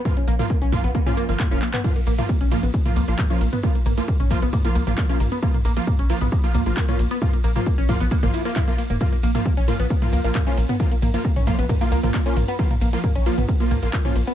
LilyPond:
<<
  \new Staff \with { instrumentName = "Synth arpeggio sound" } { \time 4/4 \key bes \minor \tempo 4 = 134 bes16 des'16 bes16 bes16 bes16 des'16 bes16 ces'16 bes16 des'16 bes16 bes16 bes16 des'16 bes16 ces'16 | bes16 bes16 bes16 bes16 bes16 des'16 bes16 ces'16 bes16 bes16 bes16 bes16 bes16 des'16 bes16 ces'16 | bes16 bes16 bes16 bes16 bes16 des'16 bes16 ces'16 bes16 bes16 bes16 bes16 bes16 des'16 bes16 ces'16 | bes16 bes16 bes16 bes16 bes16 des'16 bes16 ces'16 bes16 bes16 bes16 bes16 bes16 des'16 bes16 ces'16 |
bes16 bes16 bes16 bes16 bes16 des'16 bes16 ces'16 bes16 bes16 e'16 bes16 e'16 bes16 bes16 bes16 | bes16 bes16 bes16 bes16 bes16 des'16 bes16 ces'16 bes16 bes16 bes16 bes16 bes16 des'16 bes16 ces'16 | bes16 bes16 bes16 bes16 bes16 des'16 bes16 ces'16 bes16 bes16 bes16 bes16 bes16 des'16 bes16 ces'16 | bes16 bes16 bes16 bes16 bes16 des'16 bes16 ces'16 bes16 bes16 bes16 bes16 bes16 des'16 bes16 ces'16 | }
  \new Staff \with { instrumentName = "Synth stab" } { \time 4/4 \key bes \minor <f bes f'>16 r8 <f bes f'>16 r8 <f bes f'>16 r8 <f bes f'>8 <f bes f'>8 <f bes f'>16 r8 | <f bes f'>16 r8 <f bes f'>16 r8 <f bes f'>16 r8 <f bes f'>8 <f bes f'>8 <f bes f'>16 r8 | <f bes f'>16 r8 <f bes f'>16 r8 <f bes f'>16 r8 <f bes f'>8 <f bes f'>8 <f bes f'>16 r8 | <f bes f'>16 r8 <f bes f'>16 r8 <f bes f'>16 r8 <f bes f'>8 <f bes f'>8 <f bes f'>16 r8 |
<f bes f'>16 r8 <f bes f'>16 r8 <f bes f'>16 r8 <f bes f'>8 <f bes f'>8 <f bes f'>16 r8 | <f bes f'>16 r8 <f bes f'>16 r8 <f bes f'>16 r8 <f bes f'>8 <f bes f'>8 <f bes f'>16 r8 | <f bes f'>16 r8 <f bes f'>16 r8 <f bes f'>16 r8 <f bes f'>8 <f bes f'>8 <f bes f'>16 r8 | <f bes f'>16 r8 <f bes f'>16 r8 <f bes f'>16 r8 <f bes f'>8 <f bes f'>8 <f bes f'>16 r8 | }
  \new Staff \with { instrumentName = "Analog synth bass" } { \clef bass \time 4/4 \key bes \minor r8 bes,,16 r8 bes,,16 r16 bes,,16 r8. aes,,16 r16 f,,16 r8 | r8 bes,,16 r8 bes,,16 r16 bes,,16 r8 des,16 bes,,16 r8 bes,,16 r16 | r8 bes,,16 r8 bes,,16 r16 bes,,16 r8 des,16 bes,,16 r8 bes,,16 r16 | r8 bes,,16 r8 bes,,16 r16 bes,,16 r8 des,16 bes,,16 r8 bes,,16 r16 |
r8 bes,,16 r8 bes,,16 r16 bes,,16 r16 aes,,16 r4 r16 f,,16 | r8 bes,,16 r8 bes,,16 r16 bes,,16 r8 des,16 bes,,16 r8 bes,,16 r16 | r8 bes,,16 r8 bes,,16 r16 bes,,16 r8 des,16 bes,,16 r8 bes,,16 r16 | r8 bes,,16 r8 bes,,16 r16 bes,,16 r8 des,16 bes,,16 r8 bes,,16 r16 | }
  \new DrumStaff \with { instrumentName = "Drums" } \drummode { \time 4/4 <hh bd toml>16 hh16 hho16 <hh toml>16 <hh bd>16 hh16 <hho bd toml>16 hh16 <hh bd>16 <hh toml>16 hho16 hh16 <hc hh bd toml>16 hh16 <hc hho>16 <hc hh toml>16 | <cymc hh bd cymr toml>16 <hh cymr>16 <hho cymr>16 <hh cymr toml>16 <hh bd cymr>16 <hh cymr>16 <hho cymr toml>16 <hh cymr>16 <hh bd cymr>16 <hh cymr toml>16 <hho cymr>16 <hh cymr>16 <hc hh bd cymr toml>16 <hh cymr>16 <hho cymr>16 <hh cymr toml>16 | <hh bd cymr>16 <hh cymr>16 <hho cymr toml>16 <hh cymr>16 <hh bd cymr>16 <hh cymr toml>16 <hho bd cymr>16 <hh cymr>16 <hh bd cymr toml>16 <hh cymr>16 <hho cymr>16 <hh cymr toml>16 <hc hh bd cymr>16 <hh cymr>16 <hho cymr toml>16 <hh cymr>16 | <hh bd cymr>16 <hh cymr toml>16 <hho cymr>16 <hh cymr>16 <hh bd cymr toml>16 <hh cymr>16 <hho cymr>16 <hh cymr toml>16 <hh bd cymr>16 <hh cymr>16 <hho cymr toml>16 <hh cymr>16 <hc hh bd cymr>16 <hh cymr toml>16 <hho cymr>16 <hh cymr>16 |
<hh bd cymr toml>16 <hh cymr>16 <hho cymr>16 <hh cymr toml>16 <hh bd cymr>16 <hh cymr>16 <hho bd cymr toml>16 <hh cymr>16 <hh bd cymr>16 <hh cymr toml>16 <hho cymr>16 <hh cymr>16 <hc hh bd cymr toml>16 <hh cymr>16 <hho cymr>16 <hh cymr toml>16 | <hh bd cymr toml>16 <hh cymr>16 <hho cymr>16 <hh cymr toml>16 <hh bd cymr>16 <hh cymr>16 <hho cymr toml>16 <hh cymr>16 <hh bd cymr>16 <hh cymr toml>16 <hho cymr>16 <hh cymr>16 <hc hh bd cymr toml>16 <hh cymr>16 <hho cymr>16 <hh cymr toml>16 | <hh bd cymr>16 <hh cymr>16 <hho cymr toml>16 <hh cymr>16 <hh bd cymr>16 <hh cymr toml>16 <hho bd cymr>16 <hh cymr>16 <hh bd cymr toml>16 <hh cymr>16 <hho cymr>16 <hh cymr toml>16 <hc hh bd cymr>16 <hh cymr>16 <hho cymr toml>16 <hh cymr>16 | <hh bd cymr>16 <hh cymr toml>16 <hho cymr>16 <hh cymr>16 <hh bd cymr toml>16 <hh cymr>16 <hho cymr>16 <hh cymr toml>16 <hh bd cymr>16 <hh cymr>16 <hho cymr toml>16 <hh cymr>16 <hc hh bd cymr>16 <hh cymr toml>16 <hho cymr>16 <hh cymr>16 | }
>>